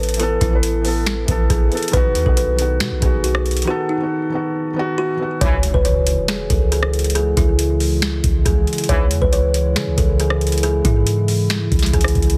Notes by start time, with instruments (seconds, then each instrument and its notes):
Already playing: 808-style bass A1, felt piano E3 B3 A4, kalimba A4
0.03 closed hi-hat
0.09 closed hi-hat
0.14 felt piano E3, closed hi-hat
0.20 felt piano B3 A4, kalimba A4, closed hi-hat
0.41 808-style bass A1, kalimba E4, kick, closed hi-hat
0.49 felt piano E3 B3
0.55 felt piano B4
0.63 closed hi-hat
0.82 felt piano E3 B3, open hi-hat
0.88 felt piano A4
1.06 finger snap, snare, closed hi-hat
1.25 808-style bass A1, felt piano E3 B3, kick, closed hi-hat
1.31 felt piano A4
1.50 808-style bass A1, kalimba G#4, kick, closed hi-hat
1.69 felt piano E3 B3, closed hi-hat
1.75 felt piano A4, closed hi-hat
1.83 closed hi-hat
1.88 felt piano D#3, closed hi-hat
1.93 808-style bass B1, felt piano B3 F#4, kalimba B4, kick, closed hi-hat
2.15 808-style bass D#2, closed hi-hat
2.23 808-style bass B1, felt piano D#3 B3, kalimba A4, kick
2.29 felt piano F#4
2.37 kalimba B4, closed hi-hat
2.56 felt piano D#3 B3, closed hi-hat
2.62 felt piano F#4
2.80 808-style bass B2, kalimba F#4, finger snap, snare, closed hi-hat
2.91 808-style bass B1
3.00 808-style bass B1, felt piano D#3 B3, kalimba G#4, kick, closed hi-hat
3.06 felt piano F#4
3.24 kalimba F#4, closed hi-hat
3.35 cross-stick
3.46 closed hi-hat, open hi-hat
3.51 closed hi-hat
3.57 closed hi-hat
3.62 felt piano D#3, closed hi-hat
3.67 felt piano B3 A4, kalimba F#4
3.89 kalimba D#4
3.97 felt piano D#3 B3
4.03 felt piano F#4
4.29 felt piano D#3 B3
4.35 felt piano F#4
4.73 felt piano D#3 B3
4.79 felt piano F#4
4.98 kalimba F#4
5.17 felt piano D#3 B3
5.22 felt piano F#4
5.41 808-style bass C#2, brass ensemble G#2 C#3 E3, analog synth pad C#3 E3 G#3 E4, kalimba C#5, kick, closed hi-hat, impact
5.63 closed hi-hat
5.74 808-style bass C#2, kalimba B4, kick
5.85 kalimba C#5, closed hi-hat
6.07 closed hi-hat
6.28 kalimba G#4, finger snap, snare, closed hi-hat
6.50 808-style bass C#2, kalimba A4, kick, closed hi-hat
6.72 kalimba G#4, closed hi-hat
6.83 cross-stick
6.93 closed hi-hat, open hi-hat
6.99 closed hi-hat
7.04 closed hi-hat
7.10 closed hi-hat
7.15 kalimba G#4, closed hi-hat
7.37 808-style bass C#2, kalimba E4, kick, closed hi-hat
7.59 closed hi-hat
7.80 open hi-hat
8.02 finger snap, snare, closed hi-hat
8.24 808-style bass C#2, kick, closed hi-hat
8.45 808-style bass C#2, kalimba G#4, kick, closed hi-hat
8.67 closed hi-hat
8.73 closed hi-hat
8.78 closed hi-hat
8.84 closed hi-hat
8.89 808-style bass C#2, brass ensemble G#2 C#3 E3, kalimba C#5, kick, closed hi-hat
9.11 808-style bass E2, closed hi-hat
9.22 808-style bass C#2, kalimba B4, kick
9.33 kalimba C#5, closed hi-hat
9.54 closed hi-hat
9.76 808-style bass C#3, kalimba G#4, finger snap, snare, closed hi-hat
9.87 808-style bass C#2
9.98 808-style bass C#2, kalimba A4, kick, closed hi-hat
10.20 kalimba G#4, closed hi-hat
10.30 cross-stick
10.41 closed hi-hat, open hi-hat
10.47 closed hi-hat
10.52 closed hi-hat
10.58 closed hi-hat
10.63 kalimba G#4, closed hi-hat
10.85 808-style bass G#2, kalimba E4, kick, closed hi-hat
11.07 closed hi-hat
11.28 open hi-hat
11.50 finger snap, snare, closed hi-hat
11.72 808-style bass C#2, kick, closed hi-hat
11.79 snare, closed hi-hat
11.86 closed hi-hat
11.93 808-style bass C#2, kalimba G#4, kick, closed hi-hat
12.01 cross-stick, closed hi-hat
12.08 closed hi-hat
12.15 808-style bass C#2, kick, closed hi-hat
12.22 closed hi-hat
12.30 closed hi-hat